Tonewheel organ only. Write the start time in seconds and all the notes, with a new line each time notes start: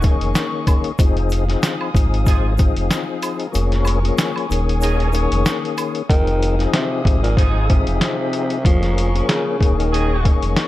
0.02 D#3 A#3 C#4 G#4
0.99 F3 C4 D#4 G#4
1.47 F3 C4 D#4 G#4
1.93 F3 C4 D#4 G#4
2.58 F3 C4 D#4 G#4
3.52 F3 A#3 C#4 G#4
4.03 F3 A#3 C#4 G#4
4.48 D#3 A#3 C#4 G#4
5.13 D#3 A#3 C#4 G#4
6.10 F3 C4 D#4 G#4
6.58 F3 C4 D#4 G#4
7.04 F3 C4 D#4 G#4
7.68 F3 C4 D#4 G#4
8.63 F3 A#3 C#4 G#4
9.13 F3 A#3 C#4 G#4
9.59 D#3 A#3 C#4 G#4
10.23 D#3 A#3 C#4 G#4